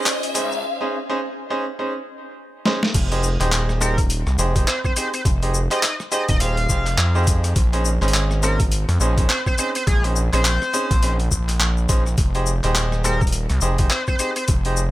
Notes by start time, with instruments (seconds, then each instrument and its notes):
Already playing: ambient pad C#4 C5 D#5 G#5, riser
0.02 clap, closed hi-hat, shaker
0.06 shaker
0.23 closed hi-hat, shaker
0.34 analog synth bass C#2, grand piano C#4 D#4 G#4 C5, closed hi-hat, shaker
0.52 shaker
0.81 grand piano C#4 D#4 G#4 C5
1.09 grand piano C#4 D#4 G#4 C5
1.50 grand piano C#4 D#4 G#4 C5
1.79 grand piano C#4 D#4 G#4 C5
2.66 grand piano C#4 D#4 G#4 C5, snare
2.83 snare
2.94 analog synth bass F1, kick, closed hi-hat, crash, shaker
3.11 grand piano D#4 G4 G#4 C5, closed hi-hat, shaker
3.23 shaker
3.40 analog synth bass D#1, grand piano D#4 G4 G#4 C5, clap, closed hi-hat, shaker
3.52 clap, closed hi-hat, shaker
3.69 cross-stick, shaker
3.81 grand piano D#4 G4 G#4 C5, analog synth lead A#4, closed hi-hat, shaker
3.98 kick, closed hi-hat, shaker
4.10 closed hi-hat, shaker
4.27 analog synth bass C2, cross-stick, shaker
4.38 analog synth bass F1, grand piano D#4 G4 G#4 C5, closed hi-hat, shaker
4.56 grand piano D#4 G4 G#4 C5, kick, closed hi-hat, shaker
4.67 analog synth lead C5, clap, shaker
4.85 analog synth lead C5, kick, shaker
4.96 grand piano D#4 G4 G#4 C5, analog synth lead C5, closed hi-hat, shaker
5.14 analog synth lead C5, closed hi-hat, shaker
5.25 analog synth bass F1, kick, closed hi-hat, shaker
5.42 grand piano D#4 G4 G#4 C5, closed hi-hat, shaker
5.54 shaker
5.71 grand piano D#4 G4 G#4 C5, analog synth lead D#5, clap, closed hi-hat, shaker
5.83 analog synth lead D#5, clap, closed hi-hat, shaker
6.00 cross-stick, shaker
6.12 grand piano D#4 G4 G#4 C5, analog synth lead D#5, closed hi-hat, shaker
6.29 analog synth bass D#1, analog synth lead D#5, kick, closed hi-hat, shaker
6.40 grand piano D#4 G4 G#4 C5, analog synth lead F5, closed hi-hat, shaker
6.57 closed hi-hat, shaker
6.69 analog synth bass F1, grand piano D#4 G4 G#4 C5, kick, shaker
6.86 clap, closed hi-hat, shaker
6.98 analog synth bass F2, clap, shaker
7.15 grand piano D#4 G4 G#4 C5, shaker
7.18 shaker
7.23 closed hi-hat, shaker
7.27 kick, shaker
7.44 cross-stick, closed hi-hat, shaker
7.56 analog synth bass A#1, kick, closed hi-hat, shaker
7.73 grand piano C#4 D#4 G#4 C5, closed hi-hat, shaker
7.85 shaker
8.02 analog synth bass G#1, grand piano C#4 D#4 G#4 C5, clap, shaker
8.08 closed hi-hat
8.14 clap, closed hi-hat, shaker
8.31 cross-stick, shaker
8.43 grand piano C#4 D#4 G#4 C5, analog synth lead A#4, closed hi-hat, shaker
8.60 kick, closed hi-hat, shaker
8.72 closed hi-hat, shaker
8.89 analog synth bass F2, cross-stick, closed hi-hat, shaker
9.00 analog synth bass A#1, grand piano C#4 D#4 G#4 C5, shaker
9.18 grand piano C#4 D#4 G#4 C5, kick, closed hi-hat, shaker
9.30 analog synth lead C5, clap, shaker
9.46 analog synth lead C5, kick, shaker
9.58 grand piano C#4 D#4 G#4 C5, analog synth lead C5, closed hi-hat, shaker
9.75 analog synth lead C5, closed hi-hat, shaker
9.87 analog synth bass A#1, analog synth lead G#4, kick, closed hi-hat, shaker
10.04 grand piano C#4 D#4 G#4 C5, closed hi-hat, shaker
10.16 shaker
10.33 analog synth bass A#1, grand piano C#4 D#4 G#4 C5, analog synth lead C5, clap, closed hi-hat, shaker
10.45 clap, closed hi-hat, shaker
10.62 cross-stick, shaker
10.74 grand piano C#4 D#4 G#4 C5, closed hi-hat, shaker
10.91 analog synth bass A#1, kick, closed hi-hat, shaker
11.03 grand piano C#4 D#4 G#4 C5, closed hi-hat, shaker
11.20 closed hi-hat, shaker
11.31 analog synth bass A#1, kick, shaker
11.49 clap, closed hi-hat, shaker
11.60 clap, shaker
11.77 shaker
11.89 analog synth bass A#1, grand piano C#4 D#4 G#4 C5, kick, closed hi-hat, shaker
12.06 cross-stick, shaker
12.18 analog synth bass F1, kick, closed hi-hat, shaker
12.35 grand piano D#4 G4 G#4 C5, closed hi-hat, shaker
12.46 shaker
12.64 analog synth bass D#1, grand piano D#4 G4 G#4 C5, clap, closed hi-hat, shaker
12.75 clap, closed hi-hat, shaker
12.92 cross-stick, shaker
13.04 grand piano D#4 G4 G#4 C5, analog synth lead A#4, closed hi-hat, shaker
13.21 kick, shaker
13.27 closed hi-hat
13.32 closed hi-hat, shaker
13.50 analog synth bass C2, cross-stick, closed hi-hat, shaker
13.61 analog synth bass F1, grand piano D#4 G4 G#4 C5, shaker
13.78 grand piano D#4 G4 G#4 C5, kick, closed hi-hat, shaker
13.90 analog synth lead C5, clap, shaker
14.07 analog synth lead C5, kick, shaker
14.19 grand piano D#4 G4 G#4 C5, analog synth lead C5, closed hi-hat, shaker
14.36 analog synth lead C5, closed hi-hat, shaker
14.48 analog synth bass F1, kick, closed hi-hat, shaker
14.65 grand piano D#4 G4 G#4 C5, closed hi-hat, shaker
14.77 shaker